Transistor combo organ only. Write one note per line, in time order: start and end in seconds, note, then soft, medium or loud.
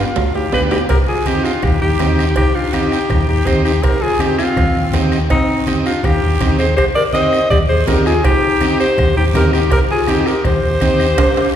0.52 0.78 B3 medium
0.52 0.79 D4 medium
0.52 0.79 G4 medium
1.26 1.52 C4 medium
1.26 1.52 D#4 medium
1.26 1.52 G4 medium
1.99 2.25 C4 medium
1.99 2.25 D#4 medium
1.99 2.26 G4 medium
2.73 2.99 C4 medium
2.73 2.99 D#4 medium
2.73 2.99 G4 medium
3.46 3.72 C4 medium
3.46 3.72 D#4 medium
3.46 3.73 G4 medium
4.20 4.46 C4 medium
4.20 4.46 D#4 medium
4.20 4.46 G4 medium
4.93 5.19 C4 medium
4.93 5.20 D#4 medium
4.93 5.20 G4 medium
5.67 5.93 C4 medium
5.67 5.93 D#4 medium
5.67 5.93 G4 medium
6.40 6.66 C4 medium
6.40 6.67 D#4 medium
6.40 6.67 G4 medium
7.14 7.40 C4 medium
7.14 7.40 D#4 medium
7.14 7.40 G4 medium
7.88 8.13 C4 medium
7.88 8.13 D#4 medium
7.88 8.14 G4 medium
8.61 8.87 C4 medium
8.61 8.87 D#4 medium
8.61 8.87 G4 medium
9.35 9.60 C4 medium
9.35 9.61 D#4 medium
9.35 9.61 G4 medium
10.08 10.34 C4 medium
10.08 10.34 D#4 medium
10.08 10.34 G4 medium
10.81 11.07 C4 medium
10.81 11.07 D#4 medium
10.81 11.07 G4 medium